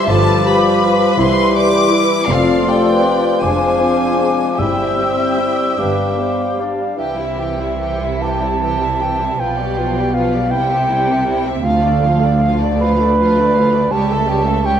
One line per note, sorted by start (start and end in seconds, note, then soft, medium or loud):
0.00 2.24 G3 medium
0.00 2.25 G4 medium
0.00 0.10 C6 medium
0.07 1.03 G1 medium
0.07 1.04 G2 medium
0.07 1.20 F3 soft
0.07 0.42 F3 medium
0.07 0.43 F4 soft
0.07 1.17 F4 medium
0.07 0.49 A4 medium
0.07 2.29 B4 medium
0.07 0.44 A5 medium
0.07 1.17 D6 medium
0.45 0.82 G3 soft
0.45 0.82 G4 soft
0.45 1.22 B4 medium
0.45 1.18 B5 medium
0.82 1.18 F3 soft
0.82 1.18 F4 soft
1.17 2.14 C2 medium
1.17 2.13 C3 medium
1.17 1.51 E3 soft
1.17 2.28 E3 medium
1.17 1.52 E4 soft
1.17 2.29 E4 medium
1.17 1.55 C5 medium
1.17 1.97 C6 medium
1.17 1.55 C6 medium
1.53 1.90 G3 soft
1.53 1.90 G4 soft
1.53 2.02 D5 medium
1.57 2.28 D6 medium
1.90 2.28 E3 soft
1.90 2.28 E4 soft
2.27 3.26 F1 medium
2.27 3.26 F2 medium
2.27 3.38 F3 soft
2.27 3.40 A3 soft
2.27 2.63 C4 soft
2.27 2.63 F4 soft
2.27 3.42 F4 soft
2.27 2.70 F4 soft
2.27 2.81 A4 soft
2.27 3.39 D5 medium
2.27 2.66 F5 medium
2.27 3.44 C6 medium
2.65 3.03 A3 soft
2.65 3.45 G4 soft
2.65 3.03 A4 soft
2.65 3.43 G5 medium
2.87 3.45 B4 soft
3.03 3.41 C4 soft
3.03 3.41 F4 soft
3.41 4.43 F1 soft
3.41 4.43 F2 soft
3.41 4.61 F3 soft
3.41 3.77 G#3 soft
3.41 5.78 C4 soft
3.41 3.77 D4 soft
3.41 4.41 D4 soft
3.41 4.61 G#4 medium
3.41 4.41 C5 soft
3.41 4.59 C5 soft
3.41 4.59 G#5 medium
3.41 4.60 D6 soft
3.80 4.19 C4 soft
3.80 4.19 F4 soft
4.18 4.58 G#3 soft
4.18 4.58 D4 soft
4.58 5.63 G1 soft
4.58 5.75 G2 soft
4.58 5.63 G2 soft
4.58 4.95 G3 soft
4.58 5.62 G3 soft
4.58 4.95 E4 soft
4.58 5.76 E4 soft
4.58 5.39 G4 soft
4.58 5.76 C5 soft
4.58 6.35 E5 soft
4.58 6.60 G5 soft
4.58 5.80 E6 soft
4.98 5.38 C4 soft
4.98 5.38 G4 soft
5.38 5.78 G3 soft
5.38 5.78 E4 soft
5.38 5.81 D5 soft
5.78 6.83 G1 soft
5.78 6.83 G2 soft
5.78 6.64 G3 soft
5.78 6.16 G3 soft
5.78 6.65 B3 soft
5.78 6.15 D4 soft
5.78 6.65 D4 soft
5.78 6.22 B4 soft
5.78 6.98 F5 soft
5.78 6.65 D6 soft
6.18 6.58 B3 soft
6.18 6.58 G4 soft
6.18 6.62 C5 soft
6.59 6.98 G3 soft
6.59 6.98 D4 soft
6.59 6.99 D5 soft
6.98 9.36 C2 soft
6.98 9.36 C3 soft
6.98 7.16 E3 soft
6.98 7.17 G4 soft
6.98 8.23 E5 medium
6.98 7.17 G5 soft
7.18 7.38 G3 soft
7.18 7.38 E4 soft
7.18 7.39 E5 soft
7.37 7.59 E3 soft
7.37 7.59 G4 soft
7.37 7.60 G5 soft
7.58 7.80 G3 soft
7.58 7.80 E4 soft
7.62 7.82 E5 soft
7.79 8.00 E3 soft
7.79 8.00 G4 soft
7.79 8.01 G5 soft
8.00 8.22 G3 soft
8.00 8.23 E4 soft
8.00 8.23 E5 soft
8.22 8.42 E3 soft
8.22 8.42 G4 soft
8.22 8.44 G5 soft
8.22 9.41 A5 medium
8.41 8.62 G3 soft
8.41 8.62 E4 soft
8.41 8.63 E5 soft
8.60 8.79 E3 soft
8.60 8.80 G4 soft
8.60 8.80 G5 soft
8.80 9.00 G3 soft
8.80 9.01 E4 soft
8.80 9.01 E5 soft
9.00 9.20 E3 soft
9.00 9.21 G4 soft
9.00 9.20 G5 soft
9.18 9.39 G3 soft
9.18 9.38 E4 soft
9.18 9.40 E5 soft
9.39 10.53 B1 soft
9.39 10.54 B2 soft
9.39 9.58 F3 soft
9.39 9.58 F4 soft
9.39 9.58 B4 soft
9.39 10.16 G5 medium
9.58 9.78 G3 soft
9.58 9.78 G4 soft
9.58 9.78 D5 soft
9.77 9.97 F3 soft
9.77 9.97 F4 soft
9.77 9.97 B4 soft
9.94 10.14 D5 soft
9.98 10.17 G3 soft
9.98 10.16 G4 soft
10.14 10.33 F3 soft
10.14 10.33 F4 soft
10.14 10.33 B4 soft
10.14 10.52 F5 medium
10.34 10.51 G3 soft
10.34 10.53 G4 soft
10.34 10.53 D5 soft
10.50 11.64 C2 medium
10.50 11.64 C3 medium
10.50 10.70 G3 soft
10.50 10.69 E4 soft
10.50 11.46 G5 medium
10.54 10.71 G5 soft
10.69 10.90 C4 soft
10.69 10.89 G4 soft
10.69 10.91 E5 soft
10.88 11.09 G3 soft
10.88 11.07 E4 soft
10.92 11.10 G5 soft
11.08 11.27 C4 soft
11.08 11.28 G4 soft
11.08 11.28 E5 soft
11.27 11.44 G3 soft
11.27 11.44 E4 soft
11.27 11.46 G5 soft
11.46 11.64 C4 soft
11.46 11.64 G4 soft
11.46 11.65 E5 soft
11.63 13.88 D2 medium
11.63 11.82 F3 soft
11.63 11.82 F4 soft
11.63 12.51 F5 medium
11.63 11.82 F5 soft
11.83 12.03 A3 soft
11.83 12.03 D4 soft
11.83 12.03 D5 soft
12.03 12.23 F3 soft
12.03 12.24 F4 soft
12.03 12.23 F5 soft
12.22 12.42 A3 soft
12.22 12.43 D4 soft
12.22 12.43 D5 soft
12.41 12.60 F3 soft
12.41 12.62 F4 soft
12.41 12.61 F5 soft
12.62 12.82 A3 soft
12.62 12.83 D4 soft
12.62 12.82 D5 soft
12.81 13.01 F3 soft
12.81 13.02 F4 soft
12.81 13.93 B4 medium
12.81 13.02 F5 soft
13.00 13.19 A3 soft
13.00 13.19 D4 soft
13.00 13.20 D5 soft
13.19 13.37 F3 soft
13.19 13.36 F4 soft
13.19 13.37 F5 soft
13.38 13.56 A3 soft
13.38 13.57 D4 soft
13.38 13.57 D5 soft
13.56 13.74 F3 soft
13.56 13.76 F4 soft
13.56 13.74 F5 soft
13.74 13.92 A3 soft
13.74 13.93 D4 soft
13.74 13.92 D5 soft
13.92 14.80 C#2 medium
13.92 14.09 G3 soft
13.92 14.09 G4 soft
13.92 14.09 C#5 medium
13.92 14.67 A5 medium
14.10 14.29 A3 soft
14.10 14.29 A4 soft
14.10 14.29 E5 soft
14.28 14.47 G3 soft
14.28 14.47 G4 soft
14.28 14.47 C#5 soft
14.45 14.65 A3 soft
14.45 14.66 A4 soft
14.45 14.65 E5 soft
14.64 14.80 G3 soft
14.64 14.80 G4 soft
14.64 14.80 C#5 soft
14.64 14.80 G5 medium